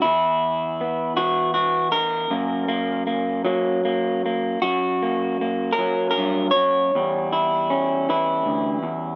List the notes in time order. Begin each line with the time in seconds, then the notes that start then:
0.02 E2 E4
0.81 B3
1.17 E3 F#4
1.54 F#4
1.92 A#4
2.30 F#2 A#3
2.68 A#3
3.07 A#3
3.45 F#3 A#3
3.85 A#3
4.26 A#3
4.62 F#2 F#4
5.03 A#3
5.41 A#3
5.73 A#4
5.79 F#3
6.11 A#4
6.18 G2
6.51 C#5
6.56 F#2
6.95 E2 G3
7.33 E4
7.70 C#4
8.09 E3 E4
8.46 D2
8.83 E2